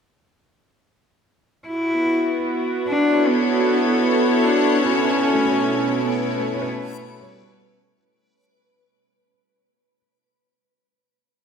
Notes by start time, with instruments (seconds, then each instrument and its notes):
1.67 cello E4, string section F#4
1.92 string section B3
2.87 cello D4
2.94 string section E4
3.09 string section A4 C#5
3.27 cello B3
4.44 cello D4
4.81 string section B2, cello C#4, synth texture B4 D7
5.34 felt piano A3
5.45 felt piano C#5
6.00 cello B3
6.39 cello A3
6.54 felt piano C#4
6.62 felt piano B4
7.18 cello G3, felt piano C#5